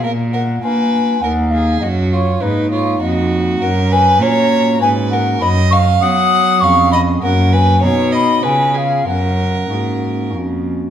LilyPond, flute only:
\new Staff \with { instrumentName = "Flute" } { \time 3/4 \key ees \minor \tempo 4 = 100 f''8 ges''8 aes''4 ges''8 f''8 | ees''8 des''8 ces''8 des''8 ees''8 r8 | \key fis \major fis''8 gis''8 ais''4 gis''8 fis''8 | b''8 cis'''8 dis'''4 cis'''8 b''8 |
fis''8 gis''8 ais''8 b''8 gis''8 eis''8 | fis''2 r4 | }